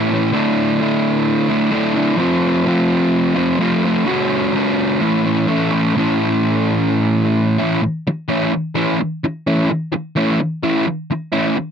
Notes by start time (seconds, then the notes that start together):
Already playing: A2 E3 A3
0.09 A3 C#4 E4
0.32 D3 A3 D4 E4
0.80 D3 A3 D4 E4
1.49 A3 D4 E4
1.71 D3 A3 D4 E4
1.95 A3 D4 E4
2.17 F3 A3 C4 F4
2.65 F3 A3 C4 F4
3.35 A3 C4 F4
3.58 F3 A3 C4
3.62 F4
3.83 A3 C4 F4
4.05 C#3 G#3 C#4 F#4
4.53 C#3 G#3 C#4 F#4
5.00 A2 E3 A3 C#4 E4
5.23 A3 C#4 E4
5.47 A2 E3 A3 C#4 E4
5.72 A3 C#4 E4
5.96 A2 E3 A3 C#4 E4
7.58 A2 E3 A3 C#4 E4
7.82 muted distorted electric guitar stroke
8.07 muted distorted electric guitar stroke
8.28 E3 A3 C#4 E4
8.53 muted distorted electric guitar stroke
8.75 E3 A3 C#4 E4
9.00 muted distorted electric guitar stroke
9.24 muted distorted electric guitar stroke
9.47 E3 A3 C#4 E4
9.70 muted distorted electric guitar stroke
9.92 muted distorted electric guitar stroke
10.16 E3 A3 C#4 E4
10.39 muted distorted electric guitar stroke
10.63 E3 A3 C#4 E4
10.87 muted distorted electric guitar stroke
11.11 muted distorted electric guitar stroke
11.32 E3 A3 C#4 E4
11.56 muted distorted electric guitar stroke